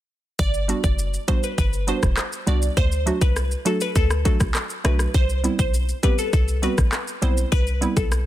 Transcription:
0.39 G1 D5, kick, shaker
0.54 shaker
0.68 G3 B3 D4 F#4, closed hi-hat, shaker
0.84 F#1 D5, kick, shaker
0.99 shaker
1.14 shaker
1.28 G3 B3 D4 F#4 C5, kick, closed hi-hat, shaker
1.43 B4, shaker
1.58 G1 B4, kick, shaker
1.73 shaker
1.87 G3 B3 D4 F#4 C5, closed hi-hat, shaker
2.03 E1, kick, cross-stick, shaker
2.17 cross-stick, clap, shaker
2.32 shaker
2.47 C2 G3 B3 D4 F#4 D5, closed hi-hat, shaker
2.62 shaker
2.77 D2 C5, kick, shaker
2.92 shaker
3.06 F#3 A3 D4 F#4, closed hi-hat, shaker
3.21 C2 B4, kick, shaker
3.36 cross-stick, shaker
3.51 shaker
3.65 F#3 A3 D4 F#4 A4, closed hi-hat, shaker
3.81 B4, shaker
3.96 D2 A4, kick, shaker
4.10 cross-stick, shaker
4.25 F#3 A3 D4 F#4 A4, kick, closed hi-hat, shaker
4.40 B1, kick, cross-stick, shaker
4.55 cross-stick, clap, shaker
4.70 shaker
4.84 B1 F#3 A3 D4 F#4 B4, cross-stick, closed hi-hat, shaker
4.99 cross-stick, shaker
5.14 C2 C5, kick, shaker
5.29 shaker
5.44 G3 B3 C4 E4, closed hi-hat, shaker
5.59 B1 C5, kick, shaker
5.74 shaker
5.89 shaker
6.03 G3 B3 C4 G4 B4, kick, closed hi-hat, shaker
6.19 A4, shaker
6.33 C2 A4, kick, shaker
6.48 shaker
6.62 G3 B3 C4 F#4 B4, closed hi-hat, shaker
6.78 A1, kick, cross-stick, shaker
6.92 cross-stick, clap, shaker
7.08 shaker
7.22 B1 G3 B3 C4 E4 C5, closed hi-hat, shaker
7.37 shaker
7.52 C2 B4, kick, shaker
7.67 shaker
7.81 G3 B3 C4 E4, closed hi-hat, shaker
7.97 B1 A4, kick, shaker
8.12 cross-stick, shaker

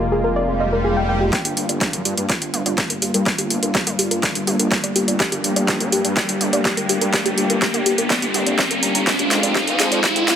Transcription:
Already playing: F1 G#3 A#3 F4
0.12 G#4
0.24 A#4
0.36 D5, swell
0.60 D#5
0.72 A#4
0.84 G#4
0.97 G5
1.09 G5
1.21 G4
1.33 G3 A#3 F4 G4, kick, snare, closed hi-hat, riser
1.45 G1 G4, closed hi-hat
1.57 G1, open hi-hat
1.69 G1 D5, closed hi-hat
1.81 G4, kick, snare, closed hi-hat
1.93 G2 A#4, closed hi-hat
2.05 G2 G4, open hi-hat
2.17 G2 D5, closed hi-hat
2.29 G4, kick, snare, closed hi-hat
2.42 G1 G5, closed hi-hat
2.54 G1, mid tom, open hi-hat
2.66 G1 D5, closed hi-hat, mid tom
2.78 G4, kick, snare, closed hi-hat
2.90 G1 A#4, closed hi-hat
3.02 G1 G4, open hi-hat
3.14 G2 A#4, closed hi-hat
3.26 G4, kick, snare, closed hi-hat
3.38 G1 G4, closed hi-hat
3.50 G1 G4, open hi-hat
3.63 G1 A#4, closed hi-hat
3.75 G4, kick, snare, closed hi-hat
3.87 G1 A#4, closed hi-hat, mid tom
3.99 G1 G4, open hi-hat
4.11 G1 A#4, closed hi-hat
4.23 D5, kick, snare, closed hi-hat
4.35 G1, closed hi-hat
4.47 G1 G4, mid tom, open hi-hat
4.59 G1 A#4, closed hi-hat
4.71 G4, kick, snare, closed hi-hat
4.84 G1 D5, closed hi-hat
4.96 G1 G4, open hi-hat
5.08 G1 D5, closed hi-hat
5.20 G4, kick, snare, closed hi-hat
5.32 G1 G4, closed hi-hat
5.44 G1, open hi-hat
5.56 G1 D5, closed hi-hat
5.68 G4, kick, snare, closed hi-hat
5.80 G2 A#4, closed hi-hat
5.92 G2 G4, open hi-hat
6.05 G2 D5, closed hi-hat
6.17 G4, kick, snare, closed hi-hat
6.29 G1 G5, closed hi-hat
6.41 G1, mid tom, open hi-hat
6.53 G1 D5, closed hi-hat, mid tom
6.65 G4, kick, snare, closed hi-hat
6.77 G1 A#4, closed hi-hat
6.89 G1 G4, open hi-hat
7.01 G2 A#4, closed hi-hat
7.13 G4, kick, snare, closed hi-hat
7.26 G1 G4, closed hi-hat
7.38 G1 G4, open hi-hat
7.50 G1 A#4, closed hi-hat
7.62 G4, kick, snare, closed hi-hat
7.74 G1 A#4, closed hi-hat, mid tom
7.86 G1 G4, open hi-hat
7.98 G1 A#4, closed hi-hat
8.10 D5, kick, snare, closed hi-hat
8.22 G1, closed hi-hat
8.34 G1 G4, mid tom, open hi-hat
8.47 G1 D5, closed hi-hat
8.59 D5, kick, snare, closed hi-hat
8.71 G1 A#4, closed hi-hat
8.83 G1 A#5, open hi-hat
8.95 G1 A#5, closed hi-hat
9.07 G#3 C4 F4 G4, kick, snare, closed hi-hat
9.19 F1 G4, closed hi-hat
9.31 F1, snare, open hi-hat
9.43 F1 D5, closed hi-hat
9.55 G4, kick, snare, closed hi-hat
9.68 F2 A#4, closed hi-hat
9.79 F2 G#4, snare, open hi-hat
9.92 F2 D5, closed hi-hat
10.04 G4, kick, snare, closed hi-hat
10.16 F1 G5, closed hi-hat
10.28 F1, snare, mid tom, open hi-hat

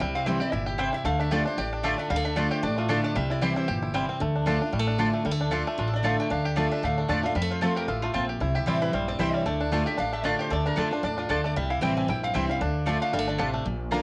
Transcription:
Already playing: C4 E4
0.00 C2 C3 G3 G5
0.15 C4 F5
0.26 E3 G3 C4 E4 C5 E5 G5
0.40 C4 E4 G4 D5
0.52 G1 A#2 E4 E5
0.66 G4
0.78 C3 C4 E4 C5 G5
0.93 E4 E5
1.04 D2 D3 A3 F5
1.19 D4 E5
1.31 D3 A3 D4 F4 G4 D5 A5
1.45 D4 F4 C5
1.57 A1 A2 G4 D5
1.73 D4
1.83 D3 A3 D4 F4 D5 G5 A5
1.98 D4 E5
2.10 D2 D3 G3 F5
2.16 A3
2.25 D4 E5
2.36 D3 A3 D4 F4 D5 A5
2.51 G4 C5
2.63 A1 A2 D4 D5
2.78 A3 F4
2.88 D3 A3 D4 F4 A4 D5 A5
3.04 D4 D5
3.15 C2 C3 G3 E5
3.30 E4 D5
3.41 E3 G3 C4 E4 G4 C5 G5
3.56 E4 C5
3.68 G1 A#2 G4
3.83 E4
3.94 C3 G3 C4 E4 C5 G5
4.09 C4
4.20 D2 D3 A3
4.36 D4
4.46 D3 A3 D4 F4 D5 A5
4.61 D4 F4
4.73 A1 A2 G3
4.79 A3
4.87 D4
4.98 D3 A3 D4 F4 D5 A5
5.13 A3
5.25 D2 D3 G3
5.31 A3
5.41 D4
5.51 D3 A3 D4 F4 D5 A5
5.67 A3
5.78 A1 A2 D4 F4
5.88 A4
5.93 D4 D5
6.03 D3 A3 D4 F4 D5 F5 A5
6.20 D4 G5
6.30 D2 D3 D4 F5
6.45 G4 E5
6.56 D3 A3 D4 F4 D5 A5
6.71 D4 E5
6.83 D2 A2 A3 F5
6.98 D4 A4
7.08 E2 D3 A3 D4 F4 D5 A5
7.23 A3 D4 F4 F5
7.35 F2 G3 E5
7.41 A3
7.50 F4 C5
7.61 F3 A3 C4 F4 A4 C5 A5
7.76 G4 A#4
7.88 A1 A2 F4 A4
8.02 A3 F4
8.14 A#1 A#2 C4 F4 C5 A5
8.29 G4
8.40 C2 C3 E4
8.55 G4 E5
8.66 A1 E3 G3 C4 E4 C5 D5 G5
8.82 E4 B4
8.93 A#1 G2 G3 C5
9.08 C4 D5
9.19 C2 E3 G3 C4 E4 C5 E5 G5
9.34 G3 C#5
9.46 D2 D3 A3 D5
9.61 D4
9.72 D3 A3 D4 F4 D5 A5
9.86 D4 F4 G4 E5
9.98 A1 A2 D4 F5
10.13 A3 E5
10.23 D3 A3 D4 F4 D5 A5
10.39 G4 C5
10.50 D2 D3 A3 D5
10.66 D4 A#4
10.76 F2 D3 A3 D4 F4 A4 D5 A5
10.91 D4 F4 C5
11.03 E2 A2 D4 D5
11.18 D4 F4
11.29 D2 D3 A3 D4 F4 A4 D5 A5
11.44 A3 D5
11.56 C2 C3 G3 E5
11.70 E4 F5
11.81 A1 E3 G3 C4 E4 C5 G5
11.97 C4 G#5
12.08 A#1 G2 E4 G5
12.23 C4 F5
12.34 C2 E3 G3 C4 E4 C5 E5 G5
12.49 G3 C4 E4 F5
12.61 D2 D3 D4
12.86 D3 A3 D4 F4 D5 A5
13.02 D4 F5
13.13 G1 D3 G3
13.19 A3
13.28 D4 D5
13.38 A1 C3 A3 D4 F4 D5 A5
13.54 A3
13.65 A#1 A#2
13.91 D3 A#3 D4 F4 D5 A#5

